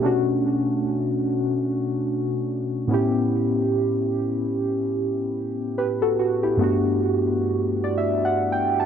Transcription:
0.00 B2 A3 C#4
0.04 D4 F#4
2.88 A2 B3 C#4
2.92 E4 G4
5.78 G4 B4
6.02 F#4 A4
6.19 F#4
6.43 E4 G4
6.57 G2 A3 B3
6.62 D4 F#4
7.84 D5
7.98 E5
8.25 F#5
8.52 G5
8.80 A5

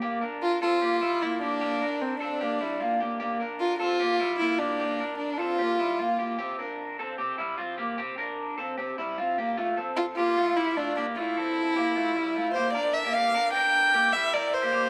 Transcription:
0.02 A#3 G4
0.21 D4 A#4
0.43 F4
0.62 C4 F4 A4
0.82 A#3 G4
1.01 G3 E4
1.21 A#3 E4 F4
1.41 A#3 D4 G4
1.61 A#3 G4
1.81 D4 A#4
2.02 C4
2.20 C4 D4 A4
2.41 A#3 G4
2.61 G3 E4
2.80 A#3 F4
3.00 A#3 G4
3.20 A#3 G4
3.40 D4 A#4
3.60 F4
3.79 C4 F4 A4
4.00 A#3 G4
4.19 G3 E4
4.39 A#3 E4 F4
4.59 A#3 D4 G4
4.80 A#3 G4
5.00 D4 A#4
5.18 D4
5.37 C4 F4 A4
5.59 A#3 G4
5.79 G3 E4
5.99 A#3 F4
6.19 A#3 G4
6.39 C4 G4
6.59 D4 A#4
6.99 C4 A4
7.18 C4 G4
7.38 G3 E4
7.58 C4 F4
7.78 A#3 G4
7.98 C4 G4
8.18 D4 A#4
8.58 C4 A4
8.78 C4 G4
8.98 G3 E4
9.18 C4 F4
9.38 A#3 G4
9.57 A3 F4
9.77 C4 A4
9.97 F4
10.16 A#3 F4 G4
10.37 A3 F4
10.57 G3 E4
10.76 A3 D4 F4
10.97 A#3 D4 G4
11.17 A3 E4 F4
11.37 C4 A4
11.76 A#3 G4
11.96 A3 F4
12.15 G3 E4
12.36 A3 F4
12.54 A#3 G4 C5
12.73 D4 A#4 D5
12.93 E5
13.05 A#3 G4
13.14 A#3 G4 F5
13.34 D4 A#4
13.53 D4 A#4 G5
13.94 A#3 G4
14.13 G3 E4 E5
14.33 E4 A#4 D5
14.53 C5
14.63 A#3 G4
14.72 A#3 G4

